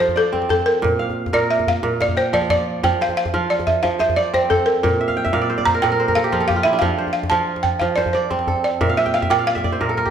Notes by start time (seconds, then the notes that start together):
Already playing: F3 F4
0.00 C5, djembe slap
0.09 djembe tone, djembe bass
0.16 A4 D5
0.33 C4, djembe slap, djembe tone
0.42 djembe slap
0.49 A4 A5, djembe bass
0.59 djembe tone
0.66 A#4
0.82 A#2, djembe slap, djembe tone, djembe bass
0.99 F5, djembe slap
1.09 djembe tone
1.26 djembe slap, djembe bass
1.33 A#2 A#4 D5, djembe slap, djembe tone
1.42 djembe slap
1.51 E5, djembe slap
1.59 djembe slap, djembe tone
1.67 F5, djembe bass
1.76 djembe slap
1.83 A#2, djembe tone
1.92 djembe slap
2.00 D5 F5, djembe slap
2.08 djembe slap, djembe tone, djembe bass
2.17 C5 G5
2.33 F3 D5, djembe slap, djembe tone
2.42 djembe slap
2.50 D5, djembe slap, djembe bass
2.58 djembe slap, djembe tone
2.83 F3 G5, djembe slap, djembe tone, djembe bass
3.00 C5 F5, djembe slap
3.09 djembe tone
3.17 F5
3.26 djembe slap, djembe bass
3.34 F3 F4, djembe tone
3.42 djembe slap
3.50 D5
3.60 djembe slap, djembe tone
3.67 E5, djembe bass
3.76 djembe slap
3.83 F3 F5, djembe slap, djembe tone
3.93 djembe slap
3.99 C5 E5, djembe slap
4.09 djembe tone, djembe bass
4.16 D5
4.34 C4 C5, djembe slap, djembe tone
4.50 A4, djembe bass
4.59 djembe tone
4.66 A#4
4.83 A#2 A#4, djembe slap, djembe tone, djembe bass
5.01 E5, djembe slap
5.08 F5, djembe tone
5.17 G5
5.25 E5, djembe slap, djembe bass
5.33 A#2 F5, djembe tone
5.42 D5, djembe slap
5.50 C5
5.58 D5, djembe tone
5.66 C5 A#5, djembe slap, djembe bass
5.74 A#4
5.82 A#2 A4 G5, djembe slap, djembe tone
5.92 A#4
6.00 C5
6.08 A#4, djembe tone, djembe bass
6.15 A4 F5
6.24 G4
6.32 F3 F4, djembe slap, djembe tone
6.40 A4, djembe slap
6.48 G4 F5, djembe bass
6.56 F4, djembe tone
6.63 E4 E5
6.73 D4
6.79 F3 F5, djembe slap, djembe tone, djembe bass
6.98 C5, djembe slap
7.07 djembe tone
7.13 F5
7.23 djembe slap, djembe bass
7.30 F3 F4 A5, djembe tone
7.40 djembe slap
7.56 djembe slap
7.63 G5, djembe slap, djembe bass
7.73 djembe slap
7.80 F3 F5, djembe slap, djembe tone
7.96 C5 D5, djembe slap
8.06 djembe tone, djembe bass
8.13 C5 D5, djembe slap
8.30 C4, djembe slap, djembe tone
8.39 djembe slap
8.47 A4, djembe bass
8.56 djembe tone
8.64 D5, djembe slap
8.81 A#2 E5, djembe slap, djembe tone, djembe bass
8.89 F5
8.97 E5
9.06 G5, djembe tone
9.14 F5, djembe slap
9.22 E5, djembe slap, djembe bass
9.30 A#2 D5 G5, djembe tone
9.39 F5
9.47 D5 F5
9.55 E5, djembe slap, djembe tone
9.64 D5, djembe bass
9.72 C5
9.81 A#2 A#4, djembe slap, djembe tone
9.89 A4, djembe slap
9.97 A#4, djembe slap
10.05 G4, djembe slap, djembe bass